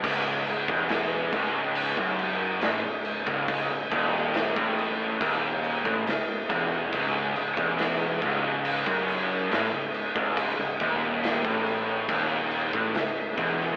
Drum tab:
CC |x-x-x-x-x-x-x-x-|x-x-x-x-x-x-x-x-|x-x-x-x-x-x-x-x-|x-x-x-x-x-x-x-x-|
SD |---oo-------o--o|---oo-------o---|----o-------o---|----o-------o--o|
BD |o--o--o--o-----o|o-o--o--o--o--o-|o--o--o--o-----o|o-o--o--o--o--o-|